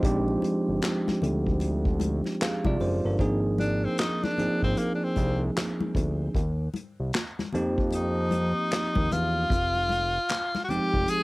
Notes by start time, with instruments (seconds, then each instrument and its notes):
Already playing: tine electric piano D#4 C5
0.03 analog synth bass A#1, tine electric piano F3 G#3 C4 D4 G4, kick, closed hi-hat, low conga
0.28 muted conga
0.42 closed hi-hat, high conga
0.68 analog synth bass G1
0.82 snare, clap, closed hi-hat, muted conga
1.08 analog synth bass D2, snare, high conga
1.22 analog synth bass D2, closed hi-hat, low conga
1.46 kick
1.60 closed hi-hat, muted conga
1.85 kick
2.00 closed hi-hat, high conga
2.24 snare, high conga
2.41 tine electric piano G#4 F5, snare, clap, closed hi-hat
2.65 analog synth bass C2, tine electric piano F4 D5, kick, muted conga, high conga
2.80 analog synth bass F#1, tine electric piano C5, open hi-hat, high conga
3.05 analog synth bass G1, tine electric piano D4 A#4
3.19 analog synth bass G#1, tine electric piano F3 A#3 C4 D#4 G#4, kick, closed hi-hat, muted conga, low conga
3.58 tenor saxophone D4, closed hi-hat, high conga
3.84 tenor saxophone C4
3.98 tenor saxophone D#4, snare, clap, closed hi-hat
4.24 tenor saxophone D4, snare, muted conga, high conga
4.38 analog synth bass G#1, tine electric piano F3 A#3 C4 D#4 G#4, closed hi-hat, low conga
4.62 analog synth bass G#1, tenor saxophone C4, kick
4.76 tenor saxophone A#3, closed hi-hat, muted conga
4.95 tenor saxophone D4
5.04 tenor saxophone C4
5.16 analog synth bass C2, kick, closed hi-hat, high conga
5.57 snare, clap, closed hi-hat
5.81 muted conga, high conga
5.95 analog synth bass D2, kick, closed hi-hat, high conga, low conga
6.35 analog synth bass D#2, kick, closed hi-hat, muted conga, low conga
6.74 closed hi-hat, high conga
7.00 analog synth bass C2
7.13 snare, clap, closed hi-hat, muted conga
7.39 analog synth bass F2, snare, high conga
7.53 analog synth bass F2, tine electric piano F3 A#3 C4 D#4 G4, closed hi-hat, low conga
7.78 kick
7.91 closed hi-hat, muted conga
7.95 tenor saxophone D#4
8.31 closed hi-hat, high conga
8.71 snare, clap, closed hi-hat, muted conga
8.95 analog synth bass D#2, kick, high conga
9.12 analog synth bass E2, tenor saxophone F4, closed hi-hat, high conga, low conga
9.50 analog synth bass F1, kick, closed hi-hat, low conga
9.75 muted conga
9.89 closed hi-hat, high conga
10.29 snare, clap, closed hi-hat, muted conga
10.55 snare, high conga
10.64 tenor saxophone F#4
10.69 analog synth bass F1, tine electric piano F3 G#3 C4 D#4 G4, tenor saxophone G4, closed hi-hat, low conga
10.94 analog synth bass F1, kick
11.07 tenor saxophone G#4, closed hi-hat, muted conga